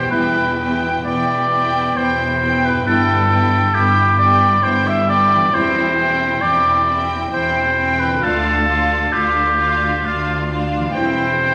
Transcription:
0.00 2.81 E2 soft
0.00 2.72 E4 soft
0.00 0.10 G4 soft
0.00 2.76 G4 soft
0.00 0.10 C5 medium
0.00 0.10 G5 soft
0.07 0.93 E1 medium
0.07 0.56 B3 medium
0.07 2.81 B4 soft
0.07 0.75 B4 medium
0.11 0.94 E2 medium
0.11 0.47 G3 medium
0.11 0.47 E4 medium
0.11 0.57 E4 soft
0.11 0.59 G5 medium
0.58 1.03 B3 soft
0.58 1.04 E4 soft
0.58 1.05 G5 soft
1.04 1.85 E1 medium
1.04 1.86 E2 soft
1.04 1.49 B3 soft
1.04 1.49 E4 soft
1.04 1.98 D5 medium
1.04 1.50 G5 soft
1.50 1.94 B3 soft
1.50 1.95 E4 soft
1.50 1.97 G5 soft
1.95 2.76 E1 medium
1.95 2.76 E2 medium
1.95 2.41 B3 soft
1.95 2.40 E4 soft
1.95 2.67 C5 medium
1.95 2.42 G5 medium
2.41 2.85 B3 medium
2.41 2.85 E4 soft
2.41 2.86 G5 medium
2.65 5.48 G2 soft
2.65 2.87 B4 medium
2.73 5.38 E4 soft
2.77 5.43 G4 soft
2.82 5.55 B4 soft
2.86 3.64 G1 medium
2.86 3.65 G2 medium
2.86 3.20 G3 medium
2.86 3.30 B3 medium
2.86 3.29 E4 medium
2.86 3.20 E4 medium
2.86 3.76 A4 medium
2.86 3.30 G5 medium
3.31 3.73 B3 soft
3.31 3.72 E4 medium
3.31 3.73 G5 soft
3.74 4.53 G1 medium
3.74 4.53 G2 medium
3.74 4.18 B3 soft
3.74 4.17 E4 soft
3.74 4.18 G4 medium
3.74 4.18 G5 medium
4.18 4.62 B3 medium
4.18 4.62 E4 medium
4.18 4.65 D5 medium
4.18 4.61 G5 soft
4.62 5.42 G1 medium
4.62 5.42 G2 medium
4.62 5.06 B3 medium
4.62 5.07 E4 medium
4.62 4.89 C5 medium
4.62 5.06 G5 medium
4.87 5.09 E5 medium
5.07 5.52 B3 medium
5.07 5.52 E4 medium
5.07 5.55 D5 medium
5.07 5.52 G5 medium
5.35 8.17 E3 medium
5.39 8.20 E4 soft
5.44 8.22 G4 soft
5.48 8.24 C5 soft
5.53 6.32 E1 medium
5.53 6.33 E2 medium
5.53 5.88 G3 medium
5.53 5.97 C4 medium
5.53 5.97 E4 medium
5.53 5.88 E4 medium
5.53 6.43 C5 medium
5.53 5.96 G5 medium
5.98 6.42 C4 soft
5.98 6.41 E4 medium
5.98 6.42 G5 soft
6.42 7.22 E1 medium
6.42 7.22 E2 medium
6.42 6.87 C4 medium
6.42 6.86 E4 soft
6.42 7.06 D5 medium
6.42 6.85 G5 soft
6.87 7.33 C4 soft
6.87 7.30 E4 soft
6.87 7.32 G5 medium
7.32 8.12 E1 medium
7.32 8.12 E2 medium
7.32 7.77 C4 medium
7.32 7.75 E4 soft
7.32 8.01 C5 medium
7.32 7.76 G5 medium
7.76 8.22 C4 medium
7.76 8.21 E4 soft
7.76 8.22 G5 medium
7.99 8.24 B4 medium
8.05 10.89 D3 soft
8.09 10.91 F4 soft
8.13 10.93 A4 soft
8.18 8.56 A3 medium
8.18 8.55 F4 medium
8.18 8.64 F4 medium
8.18 10.96 D5 soft
8.23 9.01 D2 medium
8.23 9.02 D2 medium
8.23 8.67 D4 medium
8.23 9.14 A4 medium
8.23 8.67 F5 medium
8.65 9.11 D4 soft
8.65 9.10 F4 soft
8.65 9.10 F5 soft
9.11 9.93 D2 medium
9.11 9.57 D4 medium
9.11 9.55 F4 soft
9.11 10.07 G4 medium
9.11 9.56 F5 soft
9.56 10.03 D4 soft
9.56 10.02 F4 soft
9.56 10.02 F5 medium
10.03 10.84 D2 medium
10.03 10.48 D4 soft
10.03 10.48 F4 soft
10.03 10.50 F4 medium
10.03 10.48 F5 soft
10.49 10.94 D4 soft
10.49 10.94 F4 soft
10.49 10.94 F5 soft
10.77 11.55 E3 soft
10.81 11.55 E4 soft
10.86 11.55 G4 soft
10.90 11.55 C5 soft
10.90 11.38 G5 medium
10.95 11.55 E1 medium
10.95 11.55 E2 medium
10.95 11.30 G3 medium
10.95 11.40 C4 medium
10.95 11.40 E4 medium
10.95 11.30 E4 medium
10.95 11.55 C5 medium
11.40 11.55 C4 soft
11.40 11.55 E4 soft
11.40 11.55 G5 soft

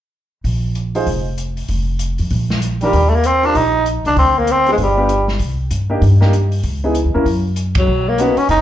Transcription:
0.44 1.03 A#1 medium
0.44 kick soft
0.44 open hi-hat soft
0.75 closed hi-hat soft
0.95 1.06 D#4 soft
0.95 1.06 F4 soft
0.95 1.06 G#4 soft
0.95 1.06 C5 medium
0.95 open hi-hat soft
1.06 1.66 F1 medium
1.06 kick soft
1.06 open hi-hat soft
1.38 closed hi-hat soft
1.57 open hi-hat soft
1.68 2.15 F1 medium
1.68 kick soft
1.68 open hi-hat soft
1.99 closed hi-hat soft
2.18 2.30 F2 medium
2.18 open hi-hat soft
2.30 2.90 A#1 medium
2.30 kick soft
2.30 open hi-hat soft
2.50 snare soft
2.62 closed hi-hat soft
2.81 2.92 D#3 soft
2.81 3.11 G3 medium
2.81 2.92 D4 soft
2.81 2.92 F4 soft
2.81 2.93 G4 soft
2.81 2.93 A#4 medium
2.81 open hi-hat soft
2.93 3.52 D#2 medium
2.93 kick soft
2.93 open hi-hat soft
3.09 3.17 A3 medium
3.15 3.28 A#3 medium
3.24 3.47 C4 medium
3.24 closed hi-hat soft
3.43 3.53 D4 medium
3.43 3.58 D4 medium
3.43 3.54 F4 soft
3.43 3.54 G4 soft
3.43 3.54 A#4 medium
3.43 open hi-hat soft
3.55 4.01 A#1 medium
3.55 3.86 D#4 medium
3.55 kick soft
3.55 open hi-hat soft
3.86 closed hi-hat soft
4.04 4.15 C2 medium
4.04 4.17 D4 medium
4.04 open hi-hat soft
4.16 4.75 D2 medium
4.16 4.40 C4 medium
4.16 kick soft
4.16 open hi-hat soft
4.38 4.53 A#3 medium
4.47 closed hi-hat soft
4.52 4.69 C4 medium
4.66 4.77 B3 soft
4.66 4.78 D4 soft
4.66 4.78 F4 soft
4.66 4.78 G#4 medium
4.66 open hi-hat soft
4.72 4.76 G#3 medium
4.78 5.37 G1 medium
4.78 kick soft
4.78 open hi-hat soft
4.83 5.27 G3 medium
4.97 5.08 B3 medium
4.97 5.08 D4 soft
4.97 5.08 F4 soft
4.97 5.08 G4 medium
5.09 closed hi-hat soft
5.28 snare soft
5.39 5.69 C2 medium
5.39 kick soft
5.39 open hi-hat soft
5.71 6.00 G2 medium
5.71 closed hi-hat soft
5.90 6.00 A#3 medium
5.90 6.01 D4 soft
5.90 6.01 D#4 soft
5.90 6.01 G4 medium
6.01 6.60 G2 medium
6.01 kick soft
6.01 open hi-hat soft
6.21 6.31 A#3 medium
6.21 6.32 D4 medium
6.21 6.32 D#4 medium
6.21 6.32 G4 medium
6.21 snare soft
6.33 closed hi-hat soft
6.52 open hi-hat soft
6.63 7.02 C#2 medium
6.63 kick soft
6.63 open hi-hat soft
6.84 6.94 B3 medium
6.84 6.94 D#4 medium
6.84 6.94 E4 soft
6.84 6.95 G#4 medium
6.95 closed hi-hat soft
7.05 7.15 D#2 soft
7.14 7.25 E2 medium
7.14 7.25 A#3 medium
7.14 7.25 C#4 soft
7.14 7.25 E4 soft
7.14 7.25 A#4 medium
7.26 7.84 F#2 medium
7.26 kick soft
7.26 open hi-hat soft
7.56 closed hi-hat soft
7.75 8.10 F#3 medium
7.75 kick medium
7.75 ride medium
7.87 8.34 B1 medium
8.08 8.23 A#3 medium
8.18 8.35 A#3 medium
8.18 8.40 B3 medium
8.18 8.36 C#4 soft
8.18 8.36 D#4 soft
8.18 8.36 F#4 medium
8.18 closed hi-hat soft
8.36 8.50 C#4 medium
8.36 muted upright bass stroke soft
8.36 open hi-hat soft
8.49 8.61 F#1 medium
8.49 8.61 D#4 medium
8.49 kick soft
8.49 open hi-hat soft

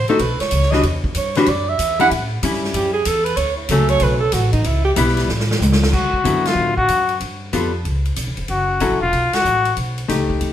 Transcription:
0.08 0.19 A3 medium
0.08 0.19 D#4 medium
0.08 0.20 F#4 medium
0.08 0.22 A4 medium
0.08 muted upright bass stroke soft
0.08 ride soft
0.19 0.39 B1 medium
0.19 0.40 B4 medium
0.19 kick soft
0.19 ride medium
0.40 0.72 C#5 loud
0.40 muted upright bass stroke soft
0.40 snare medium
0.40 ride medium
0.51 0.83 C#2 medium
0.51 kick soft
0.51 hi-hat pedal medium
0.51 ride medium
0.62 snare soft
0.71 0.82 E3 medium
0.71 0.83 G3 medium
0.71 0.83 D4 medium
0.71 0.83 F#4 medium
0.71 0.83 D#5 loud
0.71 snare medium
0.83 1.14 E2 medium
0.83 kick soft
0.83 ride medium
1.04 kick medium
1.15 1.46 G2 medium
1.15 1.38 C#5 medium
1.15 kick soft
1.15 hi-hat pedal medium
1.15 ride medium
1.35 1.47 E3 medium
1.35 1.47 G3 medium
1.35 1.47 D4 medium
1.35 1.47 F#4 medium
1.35 1.50 B4 medium
1.35 snare soft
1.35 ride soft
1.46 1.78 F#2 loud
1.46 1.71 D5 medium
1.46 kick soft
1.46 ride medium
1.69 2.00 E5 medium
1.79 2.10 E2 medium
1.79 kick soft
1.79 hi-hat pedal medium
1.79 ride medium
2.00 2.10 G3 medium
2.00 2.10 C#4 medium
2.00 2.10 E4 medium
2.00 2.07 F#5 loud
2.00 ride medium
2.11 2.42 A2 medium
2.11 kick soft
2.11 ride medium
2.43 2.73 G2 loud
2.43 2.91 G3 medium
2.43 2.91 C#4 medium
2.43 2.92 E4 medium
2.43 kick soft
2.43 hi-hat pedal soft
2.43 ride medium
2.53 snare soft
2.64 snare soft
2.74 3.05 F#2 medium
2.74 2.92 G4 medium
2.74 kick soft
2.74 ride medium
2.93 3.09 G#4 medium
3.05 3.36 E2 loud
3.05 3.26 A4 loud
3.05 kick soft
3.05 hi-hat pedal medium
3.05 ride medium
3.25 3.38 B4 loud
3.25 ride medium
3.36 3.68 D2 medium
3.36 3.56 C#5 medium
3.36 kick soft
3.36 ride medium
3.57 3.72 E4 medium
3.69 4.00 C#2 loud
3.69 4.19 F#3 medium
3.69 4.19 A3 medium
3.69 4.19 C#4 medium
3.69 3.91 A4 loud
3.69 kick soft
3.69 hi-hat pedal medium
3.69 ride medium
3.88 4.05 C#5 loud
3.88 ride medium
4.00 4.32 B1 medium
4.00 4.20 B4 loud
4.00 kick soft
4.00 ride medium
4.20 4.35 A4 medium
4.32 4.64 A1 loud
4.32 4.51 F#4 medium
4.32 kick soft
4.32 snare soft
4.32 hi-hat pedal medium
4.32 ride medium
4.52 4.67 D#4 medium
4.52 kick medium
4.52 ride medium
4.64 4.96 C#2 medium
4.64 4.84 E4 medium
4.64 kick soft
4.64 ride medium
4.85 4.92 G4 loud
4.96 5.28 B1 loud
4.96 5.29 G3 medium
4.96 5.29 B3 medium
4.96 5.30 E4 medium
4.96 kick soft
4.96 hi-hat pedal medium
4.96 ride medium
5.08 snare soft
5.17 snare soft
5.17 ride medium
5.28 5.59 A1 medium
5.28 snare medium
5.40 snare medium
5.51 snare medium
5.60 5.91 C#2 loud
5.60 hi-hat pedal medium
5.60 high tom medium
5.72 snare medium
5.83 snare loud
5.93 6.24 D2 medium
5.93 6.49 F#4 medium
5.93 kick medium
5.93 crash medium
6.14 kick medium
6.24 6.55 F#2 medium
6.24 6.73 D3 medium
6.24 6.73 F#3 medium
6.24 6.73 B3 medium
6.24 6.74 E4 medium
6.24 kick soft
6.24 hi-hat pedal soft
6.24 ride medium
6.45 6.77 F4 medium
6.45 snare medium
6.45 ride medium
6.55 6.87 A2 medium
6.77 7.18 F#4 medium
6.77 kick medium
6.88 7.20 F#2 medium
6.88 kick soft
6.88 hi-hat pedal medium
6.88 ride medium
7.09 ride soft
7.20 7.51 G2 medium
7.20 kick soft
7.20 ride medium
7.53 7.84 F2 medium
7.53 7.71 G3 medium
7.53 7.71 B3 medium
7.53 7.72 F4 medium
7.53 7.72 A4 medium
7.53 kick soft
7.53 hi-hat pedal medium
7.53 ride medium
7.85 8.16 C#2 medium
7.85 kick soft
7.85 ride medium
8.05 ride soft
8.16 8.28 B1 medium
8.16 kick soft
8.16 hi-hat pedal medium
8.16 ride medium
8.27 8.37 G1 medium
8.37 8.48 F1 medium
8.37 ride soft
8.48 8.80 F#1 medium
8.48 8.98 F#4 medium
8.48 kick soft
8.48 ride medium
8.80 8.92 A1 medium
8.80 8.99 F#3 medium
8.80 8.99 C#4 medium
8.80 8.99 E4 medium
8.80 9.00 A4 medium
8.80 kick soft
8.80 hi-hat pedal medium
8.80 ride medium
8.91 9.00 F#1 medium
9.01 9.11 E1 medium
9.01 9.36 F4 medium
9.12 9.32 B1 medium
9.12 kick soft
9.12 ride medium
9.32 9.77 F#4 medium
9.32 muted upright bass stroke soft
9.32 snare medium
9.32 ride medium
9.45 9.76 A1 medium
9.45 hi-hat pedal medium
9.65 ride soft
9.77 10.08 B1 medium
9.77 kick soft
9.77 ride medium
9.98 ride soft
10.08 10.40 C#2 medium
10.08 10.53 A3 medium
10.08 10.53 D#4 medium
10.08 10.53 G4 medium
10.08 kick soft
10.08 snare soft
10.08 hi-hat pedal medium
10.08 ride medium
10.30 kick soft
10.41 10.53 D#2 medium
10.41 kick soft
10.41 ride medium

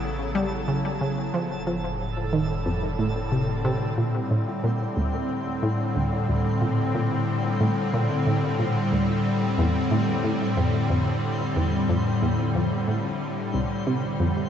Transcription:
0.00 1.31 A1 medium
0.00 1.34 C#3 medium
0.00 1.34 F#3 medium
0.00 1.34 B3 medium
0.00 1.34 E4 medium
0.00 3.99 A4 medium
0.35 0.51 G3 loud
0.68 0.83 C#3 medium
1.01 1.16 C#3 medium
1.34 3.94 F1 medium
1.34 14.49 A2 medium
1.34 1.49 F3 medium
1.56 14.49 D3 medium
1.65 1.82 F3 medium
1.65 14.49 G3 medium
2.33 2.56 D#3 medium
2.53 14.49 C4 medium
2.66 2.81 F2 medium
2.99 3.08 A2 medium
3.32 3.47 C3 medium
3.65 3.88 C3 loud
3.98 4.13 A#2 medium
3.98 14.49 C5 medium
4.31 4.40 A2 medium
4.64 4.79 A#2 medium
4.97 5.12 D2 medium
5.63 5.78 A2 loud
5.96 6.11 D2 medium
6.29 6.44 D2 medium
6.62 6.77 A#2 medium
6.95 7.10 A#2 medium
7.60 7.84 A2 medium
7.93 8.09 A#2 medium
8.26 8.36 A2 medium
8.59 8.75 A#2 medium
8.92 9.08 D2 medium
9.58 9.74 E2 loud
9.91 10.07 A2 medium
10.24 10.40 A2 medium
10.57 10.73 F2 medium
10.90 11.05 F2 medium
11.56 11.79 E2 medium
11.89 12.04 F2 medium
12.22 12.31 E2 medium
12.55 12.70 F2 medium
12.88 13.03 A2 medium
13.54 13.63 C2 medium
13.87 14.02 C3 medium
14.20 14.29 F2 medium

